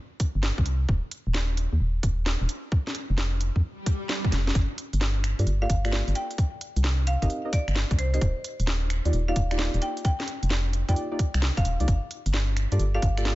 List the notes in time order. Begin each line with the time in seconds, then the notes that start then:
0.20 kick, closed hi-hat
0.35 G1
0.43 snare
0.58 C2, kick
0.66 closed hi-hat
0.89 D#1, kick
1.11 closed hi-hat
1.27 D#1
1.34 snare
1.57 closed hi-hat
1.73 D#2
1.80 D#1
2.03 D#1, kick, closed hi-hat
2.26 snare
2.41 D#1
2.49 closed hi-hat
2.72 kick
2.87 snare
2.95 closed hi-hat
3.10 F1
3.18 snare
3.41 closed hi-hat
3.56 F2, kick
3.64 swell
3.86 kick, closed hi-hat
4.09 snare
4.25 kick
4.32 F1, snare, closed hi-hat
4.47 snare
4.55 G1, kick, closed hi-hat
4.78 closed hi-hat
4.93 G1, closed hi-hat
5.01 snare
5.24 finger snap, closed hi-hat
5.39 G2 A#3 F4 G4 A4 D5, closed hi-hat
5.47 G1, closed hi-hat
5.62 A#3 F4 G4 A4 D5 F5
5.70 G1, kick, closed hi-hat
5.85 A#3 F4 G4 A4 D5, finger snap, closed hi-hat
5.92 A#3 F4 G4 A4 D5, snare
6.08 G1, closed hi-hat
6.15 G5, closed hi-hat
6.31 closed hi-hat
6.38 kick, closed hi-hat
6.61 closed hi-hat
6.76 C2, closed hi-hat
6.84 snare
7.07 F5, closed hi-hat
7.22 G1 C4 D#4 G4 A#4 D#5 F5, kick, closed hi-hat
7.30 closed hi-hat
7.45 C4 D#4 G4 A#4 D#5
7.53 D5, kick, closed hi-hat
7.68 G1, finger snap, closed hi-hat
7.76 snare
7.91 C2, kick, closed hi-hat
7.99 C5, closed hi-hat
8.14 C4 D#4 G4 A#4 C5 D#5, closed hi-hat
8.21 D#1, kick, closed hi-hat
8.44 closed hi-hat
8.60 D#1, closed hi-hat
8.67 snare
8.90 finger snap, closed hi-hat
9.05 D#2 A#3 D#4 F4 G4 D5, closed hi-hat
9.13 D#1, closed hi-hat
9.28 A#3 D#4 F4 G4 D5 F5
9.36 D#1, kick, closed hi-hat
9.51 A#3 D#4 F4 G4 D5, finger snap, closed hi-hat
9.59 A#3 D#4 F4 G4 D5, snare
9.74 D#1, closed hi-hat
9.82 G5, closed hi-hat
9.97 closed hi-hat
10.05 G5, kick, closed hi-hat
10.20 snare
10.28 closed hi-hat
10.43 F1, closed hi-hat
10.50 snare
10.73 closed hi-hat
10.89 F2 A#3 D#4 F4 G4 D5 G5, kick, closed hi-hat
10.96 closed hi-hat
11.12 A#3 D#4 F4 G4 D5
11.19 kick, closed hi-hat
11.34 C2, finger snap, closed hi-hat
11.42 snare
11.57 F1 F5, kick, closed hi-hat
11.65 D#1, closed hi-hat
11.80 C2 A#3 D#4 F4 G4 D5, closed hi-hat
11.88 G1, kick, closed hi-hat
12.11 closed hi-hat
12.26 G1, closed hi-hat
12.34 snare
12.57 finger snap, closed hi-hat
12.72 G2 A#3 F4 G4 A4 D5, closed hi-hat
12.79 G1, closed hi-hat
12.95 A#3 F4 G4 A4 D5 F5
13.02 G1, kick, closed hi-hat
13.18 A#3 F4 G4 A4 D5, finger snap, closed hi-hat
13.25 A#3 F4 G4 A4 D5, snare